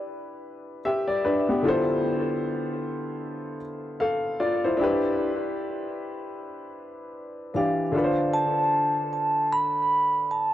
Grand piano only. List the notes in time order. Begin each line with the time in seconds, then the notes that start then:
Already playing: D4 E4 G4 B4
0.85 G4 E5
1.08 D5
1.25 D4 B4
1.49 B3 G4
1.62 D3 E4 F4
1.67 A4 C5
4.00 A4 F5
4.40 F4 D5
4.64 E4 C5
4.77 D4 E4
4.81 G4 B4
7.54 E3 D4 G4 D5
7.92 D3 D4 F4
7.96 A4 B4
8.04 C5